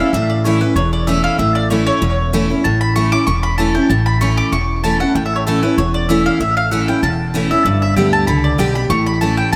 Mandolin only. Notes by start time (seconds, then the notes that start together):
0.00 F5
0.13 E5
0.30 D5
0.44 C#5
0.61 B4
0.76 C#5
0.93 D5
1.07 E5
1.24 F5
1.39 E5
1.55 D5
1.70 C#5
1.87 C#5
2.64 A5
2.81 B5
2.96 C#6
3.12 D6
3.27 C#6
3.43 B5
3.58 A5
3.75 G5
3.90 A5
4.06 B5
4.21 C#6
4.37 D6
4.52 C#6
4.84 A5
5.00 F#5
5.15 G5
5.26 E5
5.36 C#5
5.47 A4
5.63 B4
5.78 C#5
5.94 D5
6.09 E5
6.26 F5
6.41 E5
6.57 F5
6.71 F#5
6.88 G5
7.03 A5
7.51 E5
7.65 D5
7.82 E5
7.96 G5
8.13 A5
8.27 B5
8.44 D5
8.59 G5
8.75 B5
8.90 C#6
9.06 B5
9.21 A5
9.37 G5
9.52 A5